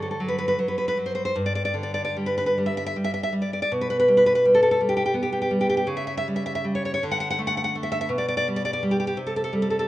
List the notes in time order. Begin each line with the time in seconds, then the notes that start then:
Already playing: G2 D3 F#3
0.02 A4
0.11 A4
0.20 F#3
0.28 B4
0.38 B4
0.48 B4
0.59 F#3
0.68 B4
0.78 B4
0.88 B4
0.97 F#3
1.06 C5
1.15 C5
1.25 C5
1.36 G2
1.46 D5
1.55 D5
1.65 D5
1.74 D3
1.83 D5
1.94 D5
2.05 D5
2.17 G3
2.26 B4
2.38 B4
2.46 B4
2.58 G3
2.66 E5
2.77 E5
2.86 E5
2.96 G3
3.04 E5
3.14 E5
3.23 E5
3.33 G3
3.42 D5
3.53 D5
3.62 D5
3.72 B2
3.81 B4
3.90 B4
4.00 B4
4.08 G3
4.17 B4
4.26 B4
4.35 B4
4.45 G3
4.54 A4
4.63 A4
4.71 A4
4.81 G3
4.89 G4
4.97 G4
5.06 G4
5.14 B3
5.23 G4
5.32 G4
5.42 G4
5.51 G3
5.61 G4
5.70 G4
5.77 G4
5.87 C#3
5.97 E5
6.07 E5
6.17 E5
6.28 G3
6.36 E5
6.46 E5
6.55 E5
6.64 G3
6.75 C#5
6.85 C#5
6.94 C#5
7.03 D3
7.11 F#5
7.20 F#5
7.30 F#5
7.39 A3
7.47 F#5
7.57 F#5
7.64 F#5
7.75 A3
7.83 E5
7.92 E5
8.01 E5
8.09 B2
8.18 D5
8.28 D5
8.37 D5
8.48 G3
8.56 D5
8.65 D5
8.73 D5
8.83 G3
8.91 G4
9.00 G4
9.07 G4
9.17 C3
9.27 A4
9.36 A4
9.44 A4
9.53 G3
9.62 A4
9.70 A4
9.79 A4